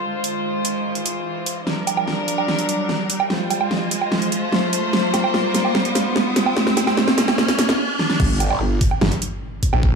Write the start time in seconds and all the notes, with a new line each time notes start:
Already playing: F4 C5, riser
0.04 G#3
0.24 closed hi-hat
0.65 closed hi-hat
0.95 closed hi-hat
1.06 closed hi-hat
1.46 closed hi-hat
1.67 G3 D4 A#4, snare
1.87 closed hi-hat, low woodblock
1.97 low woodblock
2.08 snare
2.28 closed hi-hat
2.38 low woodblock
2.48 snare
2.59 closed hi-hat
2.69 closed hi-hat
2.89 snare
3.10 closed hi-hat
3.20 low woodblock
3.30 G#3 F4 C5, snare
3.50 closed hi-hat, low woodblock
3.61 low woodblock
3.71 snare
3.91 closed hi-hat
4.02 low woodblock
4.12 snare
4.22 closed hi-hat
4.32 closed hi-hat
4.53 snare
4.73 closed hi-hat
4.93 G3, snare
5.14 snare, closed hi-hat, low woodblock
5.24 low woodblock
5.34 snare
5.54 snare, closed hi-hat
5.65 low woodblock
5.75 snare
5.85 closed hi-hat
5.95 snare, closed hi-hat
6.16 snare
6.36 snare, closed hi-hat
6.46 low woodblock
6.57 G#3, snare
6.67 snare
6.77 snare, closed hi-hat, low woodblock
6.87 snare, low woodblock
6.97 snare
7.08 snare
7.18 snare, closed hi-hat
7.28 snare, low woodblock
7.38 snare
7.48 snare, closed hi-hat
7.59 snare, closed hi-hat
7.69 snare
7.99 snare
8.10 snare
8.20 G1, kick, crash, impact
8.40 closed hi-hat, low woodblock
8.50 low woodblock
8.81 kick, open hi-hat
8.91 low woodblock
9.01 G1, snare
9.12 closed hi-hat
9.22 closed hi-hat
9.63 kick, closed hi-hat
9.73 A#1, low woodblock
9.83 kick